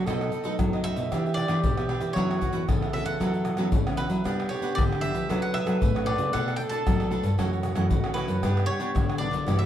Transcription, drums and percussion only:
0.07 pandeiro medium
0.07 tamborim medium
0.07 shaker medium
0.07 surdo medium
0.21 pandeiro soft
0.21 tamborim medium
0.21 shaker soft
0.32 pandeiro medium
0.32 shaker medium
0.44 pandeiro medium
0.44 shaker medium
0.59 pandeiro medium
0.59 tamborim medium
0.59 shaker medium
0.59 surdo loud
0.73 pandeiro soft
0.73 tamborim medium
0.73 shaker soft
0.84 pandeiro medium
0.84 shaker medium
0.96 pandeiro medium
0.96 shaker medium
1.12 pandeiro medium
1.12 tamborim medium
1.12 shaker medium
1.12 surdo medium
1.26 pandeiro soft
1.26 shaker soft
1.37 pandeiro medium
1.37 tamborim medium
1.37 shaker medium
1.48 pandeiro medium
1.48 tamborim medium
1.48 shaker medium
1.64 pandeiro medium
1.64 shaker medium
1.64 surdo loud
1.78 pandeiro soft
1.78 tamborim medium
1.78 shaker soft
1.89 pandeiro medium
1.89 tamborim medium
2.01 pandeiro medium
2.01 shaker medium
2.16 pandeiro medium
2.16 tamborim medium
2.16 shaker medium
2.16 surdo medium
2.31 pandeiro soft
2.31 tamborim medium
2.31 shaker soft
2.42 pandeiro medium
2.42 shaker medium
2.42 surdo medium
2.53 pandeiro medium
2.53 shaker medium
2.69 pandeiro medium
2.69 tamborim medium
2.69 shaker medium
2.69 surdo loud
2.82 pandeiro soft
2.82 tamborim medium
2.82 shaker soft
2.94 pandeiro medium
3.05 pandeiro medium
3.05 shaker medium
3.21 pandeiro medium
3.21 tamborim medium
3.21 shaker medium
3.21 surdo medium
3.34 pandeiro soft
3.34 shaker soft
3.45 pandeiro medium
3.45 tamborim medium
3.45 shaker medium
3.57 pandeiro medium
3.57 tamborim medium
3.57 shaker medium
3.72 pandeiro medium
3.72 shaker medium
3.72 surdo loud
3.87 pandeiro soft
3.87 tamborim medium
3.87 shaker soft
3.98 pandeiro soft
3.98 tamborim medium
3.98 shaker medium
4.10 pandeiro medium
4.10 shaker medium
4.25 pandeiro medium
4.25 tamborim medium
4.25 shaker medium
4.25 surdo medium
4.40 pandeiro soft
4.40 tamborim medium
4.40 shaker soft
4.51 pandeiro medium
4.62 pandeiro medium
4.62 shaker medium
4.78 pandeiro medium
4.78 tamborim medium
4.78 shaker medium
4.78 surdo loud
4.93 pandeiro soft
4.93 tamborim medium
4.93 shaker soft
5.03 pandeiro medium
5.03 shaker medium
5.15 pandeiro medium
5.15 shaker medium
5.30 pandeiro medium
5.30 tamborim medium
5.30 shaker medium
5.30 surdo medium
5.44 pandeiro soft
5.44 shaker soft
5.55 pandeiro medium
5.55 tamborim medium
5.67 pandeiro medium
5.67 tamborim medium
5.67 shaker medium
5.82 pandeiro medium
5.82 shaker medium
5.82 surdo loud
5.96 pandeiro soft
5.96 tamborim medium
5.96 shaker soft
6.07 pandeiro medium
6.07 tamborim medium
6.18 pandeiro medium
6.18 shaker medium
6.34 pandeiro medium
6.34 tamborim medium
6.34 shaker medium
6.34 surdo medium
6.48 pandeiro soft
6.48 tamborim medium
6.48 shaker soft
6.59 pandeiro medium
6.59 shaker medium
6.72 pandeiro medium
6.72 shaker medium
6.87 pandeiro medium
6.87 tamborim medium
6.87 shaker medium
6.87 surdo loud
7.00 pandeiro soft
7.00 tamborim medium
7.00 shaker soft
7.12 pandeiro medium
7.12 shaker medium
7.24 pandeiro medium
7.24 shaker medium
7.39 pandeiro medium
7.39 tamborim medium
7.39 shaker medium
7.39 surdo medium
7.53 pandeiro soft
7.53 shaker soft
7.63 pandeiro medium
7.63 tamborim medium
7.63 shaker medium
7.76 pandeiro medium
7.76 tamborim medium
7.76 shaker medium
7.90 pandeiro medium
7.90 shaker medium
7.90 surdo loud
8.04 pandeiro soft
8.04 tamborim medium
8.04 shaker soft
8.16 pandeiro soft
8.16 tamborim medium
8.16 shaker medium
8.28 pandeiro medium
8.28 shaker medium
8.43 pandeiro medium
8.43 tamborim medium
8.43 shaker medium
8.43 surdo medium
8.57 pandeiro soft
8.57 tamborim medium
8.57 shaker soft
8.68 pandeiro medium
8.80 pandeiro medium
8.80 shaker medium
8.96 pandeiro medium
8.96 tamborim medium
8.96 shaker medium
8.96 surdo loud
9.09 pandeiro soft
9.09 tamborim medium
9.09 shaker soft
9.21 pandeiro medium
9.33 pandeiro medium
9.33 shaker medium
9.48 pandeiro medium
9.48 tamborim medium
9.48 shaker medium
9.48 surdo medium
9.61 pandeiro soft
9.61 shaker soft

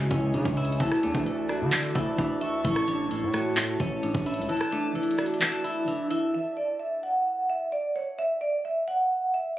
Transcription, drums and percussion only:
0.11 kick loud
0.11 closed hi-hat medium
0.34 closed hi-hat medium
0.45 kick loud
0.57 closed hi-hat medium
0.65 closed hi-hat medium
0.72 closed hi-hat medium
0.80 kick loud
0.80 closed hi-hat medium
0.88 cross-stick medium
0.88 closed hi-hat medium
0.95 closed hi-hat soft
1.03 closed hi-hat loud
1.15 kick loud
1.26 closed hi-hat medium
1.49 cross-stick medium
1.49 open hi-hat medium
1.72 clap loud
1.72 closed hi-hat medium
1.95 kick loud
1.95 closed hi-hat medium
2.18 kick loud
2.18 closed hi-hat medium
2.41 closed hi-hat medium
2.65 kick loud
2.65 closed hi-hat medium
2.76 cross-stick medium
2.88 closed hi-hat loud
3.11 closed hi-hat medium
3.34 cross-stick medium
3.34 closed hi-hat medium
3.57 clap loud
3.57 closed hi-hat medium
3.80 kick loud
3.80 closed hi-hat medium
4.03 closed hi-hat medium
4.15 kick loud
4.26 closed hi-hat medium
4.34 closed hi-hat medium
4.42 closed hi-hat medium
4.49 closed hi-hat medium
4.57 cross-stick medium
4.57 closed hi-hat medium
4.65 closed hi-hat soft
4.72 closed hi-hat medium
4.95 closed hi-hat medium
5.03 closed hi-hat medium
5.11 closed hi-hat medium
5.18 cross-stick medium
5.18 closed hi-hat medium
5.18 open hi-hat medium
5.26 closed hi-hat medium
5.34 closed hi-hat medium
5.41 clap loud
5.41 closed hi-hat medium
5.64 closed hi-hat medium
5.88 closed hi-hat medium
6.11 closed hi-hat medium

